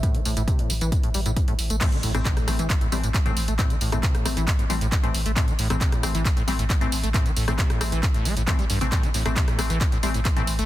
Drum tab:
CC |----------------|x---------------|----------------|----------------|
HH |xxoxxxoxxxoxxxox|xxoxxxoxxxoxxxox|xxoxxxoxxxoxxxox|xxoxxxoxxxoxxxox|
TB |x-xxx-xxx-xxx-xx|xxxxxxxxxxxxxxxx|xxxxxxxxxxxxxxxx|xxxxxxxxxxxxxxxx|
CP |----------------|x---x---x---x---|x---x---x---x---|x---x---x---x---|
SD |----------------|---r-rr---------|---r-rr---------|---r-rr---------|
BD |o---o---o---o---|o---o---o---o---|o---o---o---o---|o---o---o---o---|

CC |----------------|----------------|
HH |xxoxxxoxxxoxxxox|xxoxxxoxxxoxxxox|
TB |xxxxxxxxxxxxxxxx|xxxxxxxxxxxxxxxx|
CP |x---x---x---x---|x---x---x---x---|
SD |---r-rr---------|---r-rr---------|
BD |o---o---o---o---|o---o---o---o---|